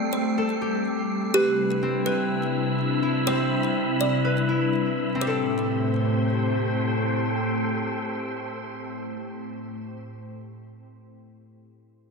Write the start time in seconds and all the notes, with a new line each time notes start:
Already playing: G3 A3 C4 G4 A4 G5 C7
0.13 C5
0.38 A4
0.61 G4
1.34 C3 C4 D4 E4 G4 B4 E5 B5 E6
1.83 C4
2.06 B4
3.03 E4
3.27 C4 C5
4.01 D5
4.25 B4
4.49 E4
5.15 C4
5.21 A2 A3 C4 G4 A4 C5 G5 C6
5.27 A4